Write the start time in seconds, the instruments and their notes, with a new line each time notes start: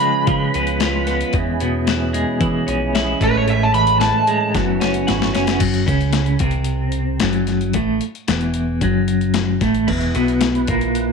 Already playing: clean electric guitar C#3 F3, tonewheel organ C#4 F4 B4, electric slide guitar B5
0.00 clean electric guitar G#3, closed hi-hat
0.27 picked electric bass C#3, clean electric guitar F3, kick, closed hi-hat
0.54 picked electric bass C#2, clean electric guitar B3, closed hi-hat
0.67 closed hi-hat
0.80 clean electric guitar F4, snare, closed hi-hat
1.07 clean electric guitar B3, snare, closed hi-hat
1.21 closed hi-hat
1.33 picked electric bass E2, clean electric guitar E2, tonewheel organ E4 G#4, kick, closed hi-hat
1.60 clean electric guitar B2, closed hi-hat
1.87 clean electric guitar E3, snare, closed hi-hat
2.13 clean electric guitar G#3, closed hi-hat
2.41 clean electric guitar E3, picked electric bass E3, kick, closed hi-hat
2.67 picked electric bass A#1, clean electric guitar C#4, closed hi-hat
2.95 clean electric guitar E4, snare, closed hi-hat
3.20 picked electric bass A1, clean electric guitar A2, tonewheel organ G#3 A3, electric slide guitar B4, kick, snare, closed hi-hat
3.37 electric slide guitar C#5
3.48 clean electric guitar A2, electric slide guitar E5, closed hi-hat
3.63 electric slide guitar A5
3.74 clean electric guitar E3, electric slide guitar B5, closed hi-hat
3.87 closed hi-hat
4.00 clean electric guitar E3, electric slide guitar A5, snare, closed hi-hat
4.27 clean electric guitar G#3, closed hi-hat
4.55 picked electric bass F#1, clean electric guitar F#2, tonewheel organ B3 E4 F#4, kick, snare, closed hi-hat
4.80 picked electric bass F#1, clean electric guitar C#4, snare, closed hi-hat
4.94 closed hi-hat
5.07 picked electric bass G#1, clean electric guitar F#4, snare, closed hi-hat
5.22 snare
5.34 picked electric bass F#1, clean electric guitar C#4, snare, closed hi-hat
5.47 snare, closed hi-hat
5.59 picked electric bass F#1, clean electric guitar F#2, kick, closed hi-hat, crash
5.74 closed hi-hat
5.87 picked electric bass C#2, clean electric guitar C#3, kick, closed hi-hat
6.01 closed hi-hat
6.13 snare, closed hi-hat
6.26 closed hi-hat
6.39 picked electric bass C2, clean electric guitar C3, kick, closed hi-hat
6.51 closed hi-hat
6.64 closed hi-hat
6.92 closed hi-hat
7.20 picked electric bass F#1, clean electric guitar F#2, snare, closed hi-hat
7.33 closed hi-hat
7.47 snare, closed hi-hat
7.61 closed hi-hat
7.73 picked electric bass A1, clean electric guitar A2, kick, closed hi-hat
8.01 closed hi-hat
8.15 closed hi-hat
8.28 picked electric bass E1, clean electric guitar E2, snare, closed hi-hat
8.41 closed hi-hat
8.54 closed hi-hat
8.81 picked electric bass F#1, clean electric guitar F#2, kick, closed hi-hat
9.08 closed hi-hat
9.21 closed hi-hat
9.34 snare, closed hi-hat
9.61 picked electric bass A1, clean electric guitar A2, kick, snare, closed hi-hat
9.75 closed hi-hat
9.87 picked electric bass E1, clean electric guitar E2, tonewheel organ E4 B4, kick, crash
10.01 closed hi-hat
10.15 picked electric bass B1, clean electric guitar B2, closed hi-hat
10.28 closed hi-hat
10.41 snare, closed hi-hat
10.55 closed hi-hat
10.67 picked electric bass A#1, clean electric guitar A#2, kick, closed hi-hat
10.81 closed hi-hat
10.95 closed hi-hat